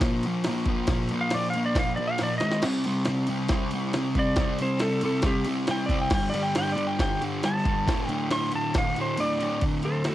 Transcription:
0.01 A#2 F3 A#3, kick, snare, ride
0.23 A#2 F3 A#3, ride
0.44 A#2 F3, snare, ride
0.48 A#3
0.66 A#2 F3 A#3, kick, ride
0.87 A#2 F3, kick, snare, ride
0.91 A#3
1.09 A#2, ride
1.13 F3 A#3
1.21 F5
1.30 A#2 D5, snare, ride
1.35 F3 A#3
1.50 F5, ride
1.55 A#2 F3 A#3
1.66 D5
1.75 A#2 F3 A#3, kick, snare, ride
1.79 F5
1.96 A#2 D5, ride
2.00 F3 A#3
2.07 F5
2.18 A#2 F3 A#3, snare, ride
2.23 D5
2.38 G#2 D#5, snare, ride
2.42 D#3 G#3
2.51 snare
2.62 C3 G3 C4, snare, splash, crash
2.84 C3 G3 C4, ride
3.05 C3 G3 C4, snare, ride
3.27 C3 G3 C4, ride
3.48 C3 G3 C4, kick, snare, ride
3.71 C3 G3 C4, ride
3.93 C3 G3 C4, snare, ride
4.15 C3 G3 C4 D5, kick, ride
4.36 C3 G3 C4, kick, snare, ride
4.58 C3 G3 C4 C5, ride
4.79 C3 G3 C4 A4, snare, ride
5.01 C3 G3 C4, ride
5.05 A4
5.22 C3 G3 C4, kick, snare, ride
5.26 G4
5.45 C3 G3 C4, ride
5.67 C3 G3 C4 G5, snare, ride
5.86 C3 D5, kick, ride
5.91 G3 C4
6.02 G5
6.10 G2 D3 G3, kick, snare, crash
6.15 G5
6.30 G2 D5
6.34 D3 G3, ride
6.43 G5
6.55 G2 D3 G3 G5, snare, ride
6.72 G2 D5
6.77 D3 G3, ride
6.87 G5
6.98 G2 D3 G3 G5, kick, snare, ride
7.21 G2 D3 G3, ride
7.43 G2 D3 G3 A5, snare, ride
7.66 G2 D3 G3, kick, ride
7.88 D2 A2 D3, kick, snare, ride
8.07 D2 A2 D3 G5, ride
8.30 D2 A2 D3 C6, snare, ride
8.52 D2 A2 D3 A5, ride
8.74 D2 A2 D3 F5, kick, snare, ride
8.95 D2 A2 D3, ride
9.02 C5
9.18 D2 A2 D3 D5, ride
9.41 D2 A2 D3, ride
9.61 D2 A2, kick, ride
9.65 D3
9.83 D3 A4 C5, ride
9.88 A2
10.04 D2 A2 F#4 A4, snare, ride
10.10 D3

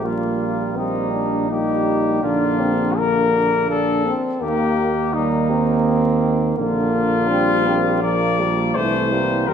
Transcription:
Already playing: A#1
0.04 G3 A#3 F4
0.77 G3 A#3 C4 D#4
1.13 D4
1.49 G3 A#3 D#4 G4
2.23 A#1 D3 A#3 D4 F4
2.60 C4
2.97 D3 A#3 A#4
3.70 D4 A4
4.06 C4
4.41 D#2 D#3 A#3 G4
5.13 D#3 G3 A#3 D#4
5.50 C4
6.57 A#1 D3 A#3 F4
7.29 G3 C4 D4
7.66 A#3 C4
8.03 F3 A#3 D5
8.40 G3 A#3
8.75 C2 E3 A3 C5
9.12 G3 A#3
9.47 E2 G3 C4 A#4

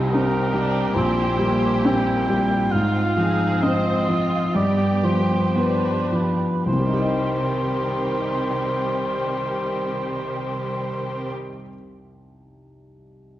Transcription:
Already playing: C2 C3 G3 C4 D#4
0.11 C4 D#4 G4 A#4
0.52 G3 D4
0.93 A#1 A#2 C4 E4 C5
1.38 G3 A#3
1.83 A#3 C4 G5
2.30 G3
2.71 G#2 C4 F4 F5
3.17 F3 D#4 G#4
3.62 C4 F4 C5 D#5
4.07 F3 F4
4.54 G2 B3 G4 D5
5.03 F3 C5
5.55 B3 D4 G4 B4
6.12 F3 B4
6.64 C2 C3 D#3 G3 C4 G4 C5
6.72 C3
6.79 G3
6.86 D#4
6.93 G4
7.00 D#5

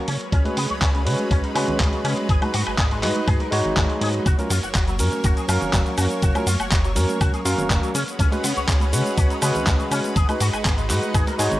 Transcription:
Already playing: F#3
0.08 C#3 G#3 C#4 B4, open hi-hat, muted conga
0.21 closed hi-hat
0.32 C#2 C#4, kick, closed hi-hat, muted conga
0.45 G#3 C#4 F#4 B4, closed hi-hat, high conga
0.57 C#3 B3, open hi-hat
0.70 C#2 C#5, closed hi-hat, muted conga
0.82 C#2 C#4, kick, clap, closed hi-hat
0.95 C#3, closed hi-hat, muted conga
1.05 C#3 G#3 C#4 F#4 B4, open hi-hat
1.19 closed hi-hat, high conga
1.30 C#2 C#4, kick, closed hi-hat, muted conga
1.44 D#4, closed hi-hat
1.54 C#3 G#3 B3 C#4 F#4 B4, open hi-hat, muted conga, high woodblock
1.68 C#2, closed hi-hat, low conga
1.80 C#2 C#3, kick, clap, closed hi-hat, high conga
1.93 C#3, closed hi-hat, muted conga
2.05 C#3 C#4, open hi-hat, high woodblock
2.17 closed hi-hat, muted conga
2.29 G#1 D#4 G#4, kick, closed hi-hat
2.41 G#3 D#4 F#4 B4, closed hi-hat, high conga, high woodblock
2.54 G#2 F#4, open hi-hat, muted conga
2.67 G#1 G#5, closed hi-hat, high woodblock
2.78 G#1 G#4, kick, clap, closed hi-hat, muted conga
2.91 G#3, closed hi-hat
3.02 G#2 G#3 D#4 F#4 B4, clap, open hi-hat
3.16 closed hi-hat, muted conga, high conga
3.28 G#1 G#4, kick, closed hi-hat, high woodblock
3.40 A#4, closed hi-hat, muted conga
3.51 G#2 G#3 D#4 F#4 C#5, open hi-hat
3.65 G#1, low conga
3.76 G#1 G#3, kick, clap, closed hi-hat, muted conga, high conga
3.90 G#3, closed hi-hat
4.01 G#2 G#4, open hi-hat, muted conga
4.14 closed hi-hat
4.26 F#1 A#3 F#4 C#5, kick, closed hi-hat, muted conga, shaker
4.38 F#3 C#4 F4 A#4, closed hi-hat, high conga, shaker
4.50 F#2 F4, open hi-hat, muted conga, shaker
4.63 F#1 F#5, closed hi-hat, shaker
4.75 F#1 F#4, kick, clap, closed hi-hat, shaker
4.88 F#3, closed hi-hat, muted conga, shaker
4.99 F#2 F#3 C#4 A#4, open hi-hat, shaker
5.12 closed hi-hat, muted conga, high conga, shaker
5.24 F#1 F#4, kick, closed hi-hat, shaker
5.37 G#4, closed hi-hat, shaker
5.48 F#2 F#3 C#4 F4 A#4 F5, open hi-hat, muted conga, high woodblock, shaker
5.61 F#1, closed hi-hat, low conga, shaker
5.73 F#1 F#3, kick, clap, closed hi-hat, muted conga, high conga, shaker
5.86 F#3, closed hi-hat, shaker
5.98 F#2 F#4, open hi-hat, high woodblock, shaker
6.10 closed hi-hat, muted conga, shaker
6.22 F#1 F#4, kick, closed hi-hat, shaker
6.35 F#3 C#4 F4 A#4, closed hi-hat, muted conga, high conga, high woodblock, shaker
6.47 F#2 F4, open hi-hat, shaker
6.59 F#1 F#5, closed hi-hat, high woodblock, shaker
6.71 F#1 F#4, kick, clap, closed hi-hat, muted conga, shaker
6.84 F#3, closed hi-hat, shaker
6.96 F#2 F#3 C#4 A#4, open hi-hat, muted conga, shaker
7.09 closed hi-hat, high conga, shaker
7.21 F#1 F#4, kick, closed hi-hat, high woodblock, shaker
7.34 G#4, closed hi-hat, muted conga, shaker
7.45 F#2 F#3 C#4 F4 A#4 F5, open hi-hat, shaker
7.58 F#1, closed hi-hat, muted conga, low conga, shaker
7.70 F#1 F#3, kick, clap, closed hi-hat, high conga, shaker
7.83 F#3, closed hi-hat, shaker
7.95 C#3 G#3 C#4 F#4 B4, open hi-hat, muted conga, shaker
8.08 closed hi-hat, shaker
8.19 C#2 C#4, kick, closed hi-hat, muted conga, shaker
8.32 G#3 C#4 F#4 B4, closed hi-hat, high conga, shaker
8.44 C#3 B3, open hi-hat, shaker
8.56 C#2 C#5, closed hi-hat, muted conga, shaker
8.68 C#2 C#4, kick, clap, closed hi-hat, shaker
8.80 C#3, closed hi-hat, muted conga, shaker
8.93 C#3 G#3 C#4 F#4 B4, open hi-hat, shaker
9.05 closed hi-hat, high conga, shaker
9.17 C#2 C#4, kick, closed hi-hat, muted conga, shaker
9.30 D#4, closed hi-hat, shaker
9.42 C#3 G#3 B3 C#4 F#4 B4, open hi-hat, muted conga, high woodblock, shaker
9.55 C#2, closed hi-hat, low conga, shaker
9.66 C#2 C#3, kick, clap, closed hi-hat, high conga, shaker
9.79 C#3, closed hi-hat, muted conga, shaker
9.91 C#3 C#4, open hi-hat, high woodblock, shaker
10.04 closed hi-hat, muted conga, shaker
10.16 G#1 D#4 F#4 G#4, kick, closed hi-hat, shaker
10.29 G#3 D#4 F#4 B4, closed hi-hat, high conga, high woodblock, shaker
10.40 G#2 F#4, open hi-hat, muted conga, shaker
10.53 G#1 G#5, closed hi-hat, high woodblock, shaker
10.65 G#1 G#4, kick, clap, closed hi-hat, muted conga, shaker
10.78 G#3, closed hi-hat, shaker
10.90 G#2 G#3 D#4 F#4 B4, clap, open hi-hat, shaker
11.02 closed hi-hat, muted conga, high conga, shaker
11.14 G#1 G#4, kick, closed hi-hat, high woodblock, shaker
11.27 A#4, closed hi-hat, muted conga, shaker
11.38 G#2 G#3 D#4 F#4 G#4 C#5, open hi-hat, shaker
11.52 G#1, closed hi-hat, low conga, shaker

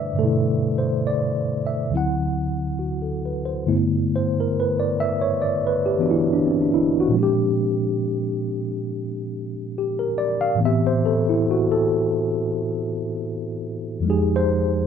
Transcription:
Already playing: G2 B2 D3 G3 A3 D4 E4 B4 C5 D5 E5
0.13 G2 D3
0.19 B2 A3 A4
0.24 E4
0.78 C5
1.07 D5
1.67 E5
1.89 D2 D3 F#3
1.94 C4 E4 F#5
2.79 F#4
3.02 A4
3.26 B4
3.45 C5
3.67 G2 D3 A3 B3 E4
4.16 C5
4.40 A#4
4.60 B4
4.80 D5
5.00 E5
5.21 C#5
5.42 D5
5.67 B4
5.86 G4
5.98 E3 B3 D4 F#4
6.11 E4
6.33 D4
6.46 C4
6.61 D4
6.74 E4
7.00 F#4
7.08 A#2 F3
7.12 G#3 C4 D4
7.19 G4
7.23 G4
9.78 G4
9.99 A#4
10.18 D5
10.41 F5
10.55 A2 E3
10.61 B3 C4
10.65 G4 E5
10.87 C5
11.06 A4
11.29 E4
11.51 F#4
11.72 A4
14.00 F2 F3
14.05 G#3 D#4
14.10 G4 G#4
14.36 C5

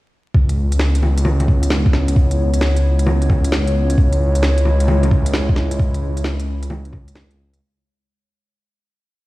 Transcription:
0.34 C#2 B3 E4 C#5, kick
0.49 closed hi-hat
0.72 closed hi-hat
0.79 snare
0.95 closed hi-hat
1.03 low bongo
1.18 closed hi-hat
1.25 low bongo
1.40 closed hi-hat, low bongo
1.48 kick
1.63 closed hi-hat
1.70 snare
1.86 kick
1.93 snare
2.08 closed hi-hat
2.16 kick
2.31 closed hi-hat
2.54 closed hi-hat
2.61 snare
2.77 closed hi-hat
2.99 closed hi-hat
3.07 low bongo
3.22 closed hi-hat
3.30 kick, low bongo
3.44 closed hi-hat
3.52 snare
3.67 closed hi-hat
3.90 closed hi-hat
3.98 C#2 G#3 E4, kick
4.13 closed hi-hat
4.35 closed hi-hat
4.43 snare
4.58 closed hi-hat
4.65 low bongo
4.80 closed hi-hat
4.88 low bongo
5.03 closed hi-hat, low bongo
5.11 kick
5.26 closed hi-hat
5.33 snare
5.49 kick
5.56 snare
5.71 closed hi-hat
5.79 kick
5.94 closed hi-hat
6.17 closed hi-hat
6.24 snare
6.40 closed hi-hat
6.63 closed hi-hat
6.70 low bongo
6.85 closed hi-hat
6.93 kick, low bongo
7.08 closed hi-hat
7.15 snare
7.31 closed hi-hat
7.54 closed hi-hat

